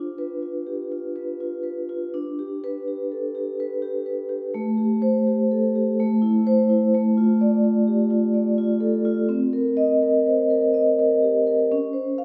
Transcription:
0, 0, Header, 1, 2, 480
1, 0, Start_track
1, 0, Tempo, 488202
1, 2109, Time_signature, 5, 2, 24, 8
1, 3065, Tempo, 476569
1, 12258, End_track
2, 0, Start_track
2, 0, Title_t, "Vibraphone"
2, 0, Program_c, 0, 11
2, 0, Control_c, 0, 64, 127
2, 0, Note_on_c, 0, 62, 57
2, 0, Note_on_c, 0, 65, 46
2, 180, Note_on_c, 0, 71, 57
2, 327, Note_off_c, 0, 65, 0
2, 417, Note_on_c, 0, 65, 37
2, 567, Note_off_c, 0, 71, 0
2, 655, Note_on_c, 0, 67, 40
2, 807, Note_off_c, 0, 65, 0
2, 902, Note_off_c, 0, 67, 0
2, 902, Note_on_c, 0, 65, 44
2, 1138, Note_on_c, 0, 71, 49
2, 1288, Note_off_c, 0, 65, 0
2, 1380, Note_on_c, 0, 65, 44
2, 1524, Note_off_c, 0, 71, 0
2, 1605, Note_on_c, 0, 71, 45
2, 1767, Note_off_c, 0, 65, 0
2, 1860, Note_on_c, 0, 65, 45
2, 2002, Note_off_c, 0, 71, 0
2, 2067, Note_off_c, 0, 62, 0
2, 2103, Note_on_c, 0, 62, 59
2, 2105, Note_off_c, 0, 65, 0
2, 2126, Control_c, 0, 64, 0
2, 2311, Control_c, 0, 64, 127
2, 2349, Note_on_c, 0, 67, 46
2, 2593, Note_on_c, 0, 71, 65
2, 2734, Note_off_c, 0, 67, 0
2, 2829, Note_on_c, 0, 67, 43
2, 2973, Note_off_c, 0, 71, 0
2, 3065, Note_on_c, 0, 69, 41
2, 3209, Note_off_c, 0, 67, 0
2, 3300, Note_on_c, 0, 67, 51
2, 3304, Note_off_c, 0, 69, 0
2, 3550, Note_on_c, 0, 71, 60
2, 3686, Note_off_c, 0, 67, 0
2, 3775, Note_on_c, 0, 67, 51
2, 3934, Note_off_c, 0, 71, 0
2, 4015, Note_on_c, 0, 71, 49
2, 4167, Note_off_c, 0, 67, 0
2, 4248, Note_on_c, 0, 67, 46
2, 4405, Note_off_c, 0, 71, 0
2, 4463, Note_off_c, 0, 62, 0
2, 4496, Note_off_c, 0, 67, 0
2, 4502, Note_on_c, 0, 57, 65
2, 4524, Control_c, 0, 64, 0
2, 4665, Control_c, 0, 64, 127
2, 4734, Note_on_c, 0, 67, 46
2, 4981, Note_on_c, 0, 72, 70
2, 5130, Note_off_c, 0, 67, 0
2, 5234, Note_on_c, 0, 67, 46
2, 5373, Note_off_c, 0, 72, 0
2, 5477, Note_on_c, 0, 69, 46
2, 5616, Note_off_c, 0, 67, 0
2, 5714, Note_off_c, 0, 69, 0
2, 5720, Note_on_c, 0, 67, 51
2, 5909, Note_off_c, 0, 57, 0
2, 5956, Note_off_c, 0, 67, 0
2, 5967, Note_on_c, 0, 57, 67
2, 5968, Control_c, 0, 64, 0
2, 6158, Control_c, 0, 64, 127
2, 6188, Note_on_c, 0, 64, 56
2, 6440, Note_on_c, 0, 72, 81
2, 6576, Note_off_c, 0, 64, 0
2, 6668, Note_on_c, 0, 64, 51
2, 6821, Note_off_c, 0, 72, 0
2, 6893, Note_off_c, 0, 57, 0
2, 6911, Note_off_c, 0, 64, 0
2, 6920, Note_on_c, 0, 57, 74
2, 6931, Control_c, 0, 64, 0
2, 7082, Control_c, 0, 64, 127
2, 7150, Note_on_c, 0, 65, 56
2, 7390, Note_on_c, 0, 74, 74
2, 7533, Note_off_c, 0, 65, 0
2, 7622, Note_on_c, 0, 65, 57
2, 7771, Note_off_c, 0, 74, 0
2, 7857, Note_on_c, 0, 67, 51
2, 8004, Note_off_c, 0, 65, 0
2, 8090, Note_on_c, 0, 65, 59
2, 8098, Note_off_c, 0, 67, 0
2, 8328, Note_on_c, 0, 74, 57
2, 8475, Note_off_c, 0, 65, 0
2, 8568, Note_on_c, 0, 65, 64
2, 8714, Note_off_c, 0, 74, 0
2, 8794, Note_on_c, 0, 69, 58
2, 8955, Note_off_c, 0, 65, 0
2, 9041, Note_on_c, 0, 65, 59
2, 9192, Note_off_c, 0, 69, 0
2, 9263, Note_off_c, 0, 57, 0
2, 9279, Note_on_c, 0, 60, 75
2, 9293, Note_off_c, 0, 65, 0
2, 9317, Control_c, 0, 64, 0
2, 9454, Control_c, 0, 64, 127
2, 9526, Note_on_c, 0, 70, 55
2, 9764, Note_on_c, 0, 75, 77
2, 9923, Note_off_c, 0, 70, 0
2, 10021, Note_on_c, 0, 70, 52
2, 10162, Note_off_c, 0, 75, 0
2, 10267, Note_on_c, 0, 72, 49
2, 10413, Note_off_c, 0, 70, 0
2, 10502, Note_on_c, 0, 70, 58
2, 10512, Note_off_c, 0, 72, 0
2, 10743, Note_on_c, 0, 75, 61
2, 10894, Note_off_c, 0, 70, 0
2, 10996, Note_on_c, 0, 70, 57
2, 11132, Note_off_c, 0, 75, 0
2, 11235, Note_on_c, 0, 67, 51
2, 11378, Note_off_c, 0, 70, 0
2, 11477, Note_on_c, 0, 70, 51
2, 11616, Note_off_c, 0, 67, 0
2, 11660, Note_off_c, 0, 60, 0
2, 11713, Note_off_c, 0, 70, 0
2, 11726, Note_on_c, 0, 61, 75
2, 11729, Control_c, 0, 64, 0
2, 11913, Control_c, 0, 64, 127
2, 11943, Note_on_c, 0, 72, 50
2, 12196, Note_on_c, 0, 77, 64
2, 12258, Note_off_c, 0, 61, 0
2, 12258, Note_off_c, 0, 72, 0
2, 12258, Note_off_c, 0, 77, 0
2, 12258, End_track
0, 0, End_of_file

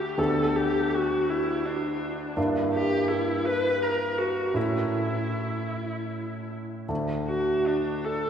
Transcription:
0, 0, Header, 1, 3, 480
1, 0, Start_track
1, 0, Tempo, 754717
1, 116, Time_signature, 6, 3, 24, 8
1, 595, Tempo, 724638
1, 2995, Tempo, 775194
1, 5311, End_track
2, 0, Start_track
2, 0, Title_t, "Viola"
2, 0, Program_c, 0, 41
2, 0, Note_on_c, 0, 67, 52
2, 119, Note_on_c, 0, 69, 50
2, 129, Note_off_c, 0, 67, 0
2, 357, Note_on_c, 0, 67, 54
2, 366, Note_off_c, 0, 69, 0
2, 600, Note_on_c, 0, 66, 52
2, 610, Note_off_c, 0, 67, 0
2, 834, Note_on_c, 0, 64, 52
2, 844, Note_off_c, 0, 66, 0
2, 1073, Note_on_c, 0, 62, 49
2, 1083, Note_off_c, 0, 64, 0
2, 1548, Note_off_c, 0, 62, 0
2, 1788, Note_on_c, 0, 67, 61
2, 2018, Note_on_c, 0, 64, 56
2, 2028, Note_off_c, 0, 67, 0
2, 2263, Note_on_c, 0, 71, 64
2, 2273, Note_off_c, 0, 64, 0
2, 2507, Note_on_c, 0, 70, 51
2, 2517, Note_off_c, 0, 71, 0
2, 2743, Note_on_c, 0, 66, 47
2, 2753, Note_off_c, 0, 70, 0
2, 2997, Note_on_c, 0, 64, 40
2, 3006, Note_off_c, 0, 66, 0
2, 4204, Note_off_c, 0, 64, 0
2, 4678, Note_on_c, 0, 66, 51
2, 4921, Note_on_c, 0, 62, 43
2, 4930, Note_off_c, 0, 66, 0
2, 5152, Note_on_c, 0, 69, 49
2, 5161, Note_off_c, 0, 62, 0
2, 5311, Note_off_c, 0, 69, 0
2, 5311, End_track
3, 0, Start_track
3, 0, Title_t, "Grand piano"
3, 0, Program_c, 1, 0
3, 0, Control_c, 1, 64, 127
3, 0, Note_on_c, 1, 38, 33
3, 0, Note_on_c, 1, 57, 25
3, 0, Note_on_c, 1, 62, 28
3, 0, Note_on_c, 1, 66, 27
3, 86, Note_off_c, 1, 62, 0
3, 86, Note_off_c, 1, 66, 0
3, 87, Note_off_c, 1, 38, 0
3, 87, Note_off_c, 1, 57, 0
3, 112, Note_on_c, 1, 38, 38
3, 112, Note_on_c, 1, 67, 30
3, 113, Note_on_c, 1, 59, 28
3, 113, Note_on_c, 1, 62, 32
3, 127, Control_c, 1, 64, 0
3, 251, Control_c, 1, 64, 127
3, 1516, Note_off_c, 1, 38, 0
3, 1516, Note_off_c, 1, 67, 0
3, 1517, Note_off_c, 1, 59, 0
3, 1517, Note_off_c, 1, 62, 0
3, 1544, Note_on_c, 1, 43, 40
3, 1544, Note_on_c, 1, 58, 37
3, 1544, Note_on_c, 1, 62, 38
3, 1545, Note_on_c, 1, 64, 37
3, 1556, Control_c, 1, 64, 0
3, 1654, Control_c, 1, 64, 127
3, 2967, Note_off_c, 1, 43, 0
3, 2967, Note_off_c, 1, 58, 0
3, 2967, Note_off_c, 1, 62, 0
3, 2967, Note_off_c, 1, 64, 0
3, 2982, Note_on_c, 1, 57, 29
3, 2983, Note_on_c, 1, 64, 30
3, 2984, Note_on_c, 1, 61, 30
3, 2985, Note_on_c, 1, 45, 38
3, 3005, Control_c, 1, 64, 0
3, 3111, Control_c, 1, 64, 127
3, 4412, Note_off_c, 1, 57, 0
3, 4412, Note_off_c, 1, 64, 0
3, 4413, Note_off_c, 1, 45, 0
3, 4413, Note_off_c, 1, 61, 0
3, 4435, Note_on_c, 1, 38, 35
3, 4437, Note_on_c, 1, 57, 32
3, 4437, Note_on_c, 1, 62, 29
3, 4454, Control_c, 1, 64, 0
3, 4541, Control_c, 1, 64, 127
3, 5311, Note_off_c, 1, 38, 0
3, 5311, Note_off_c, 1, 57, 0
3, 5311, Note_off_c, 1, 62, 0
3, 5311, End_track
0, 0, End_of_file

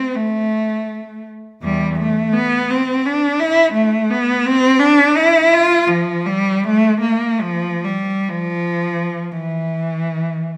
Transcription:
0, 0, Header, 1, 2, 480
1, 0, Start_track
1, 0, Tempo, 724638
1, 1079, Time_signature, 3, 2, 24, 8
1, 2029, Tempo, 696056
1, 3469, Tempo, 739827
1, 4429, Tempo, 778210
1, 4909, Tempo, 895522
1, 5389, Tempo, 1005025
1, 6473, End_track
2, 0, Start_track
2, 0, Title_t, "Cello"
2, 0, Program_c, 0, 42
2, 0, Note_on_c, 0, 60, 90
2, 98, Note_on_c, 0, 57, 91
2, 102, Note_off_c, 0, 60, 0
2, 833, Note_off_c, 0, 57, 0
2, 1075, Note_on_c, 0, 40, 77
2, 1080, Note_on_c, 0, 55, 88
2, 1295, Note_off_c, 0, 40, 0
2, 1298, Note_off_c, 0, 55, 0
2, 1323, Note_on_c, 0, 57, 91
2, 1542, Note_on_c, 0, 59, 107
2, 1553, Note_off_c, 0, 57, 0
2, 1786, Note_on_c, 0, 60, 96
2, 1788, Note_off_c, 0, 59, 0
2, 2022, Note_on_c, 0, 62, 97
2, 2027, Note_off_c, 0, 60, 0
2, 2255, Note_on_c, 0, 64, 106
2, 2268, Note_off_c, 0, 62, 0
2, 2490, Note_on_c, 0, 57, 91
2, 2504, Note_off_c, 0, 64, 0
2, 2733, Note_off_c, 0, 57, 0
2, 2743, Note_on_c, 0, 59, 102
2, 2978, Note_off_c, 0, 59, 0
2, 2988, Note_on_c, 0, 60, 121
2, 3218, Note_on_c, 0, 62, 117
2, 3224, Note_off_c, 0, 60, 0
2, 3468, Note_off_c, 0, 62, 0
2, 3475, Note_on_c, 0, 64, 110
2, 3708, Note_off_c, 0, 64, 0
2, 3715, Note_on_c, 0, 65, 112
2, 3933, Note_on_c, 0, 53, 99
2, 3948, Note_off_c, 0, 65, 0
2, 4179, Note_off_c, 0, 53, 0
2, 4189, Note_on_c, 0, 55, 103
2, 4431, Note_off_c, 0, 55, 0
2, 4433, Note_on_c, 0, 57, 107
2, 4662, Note_on_c, 0, 58, 92
2, 4666, Note_off_c, 0, 57, 0
2, 4903, Note_off_c, 0, 58, 0
2, 4907, Note_on_c, 0, 53, 93
2, 5136, Note_off_c, 0, 53, 0
2, 5139, Note_on_c, 0, 55, 84
2, 5381, Note_on_c, 0, 53, 100
2, 5390, Note_off_c, 0, 55, 0
2, 5863, Note_off_c, 0, 53, 0
2, 5871, Note_on_c, 0, 52, 78
2, 6473, Note_off_c, 0, 52, 0
2, 6473, End_track
0, 0, End_of_file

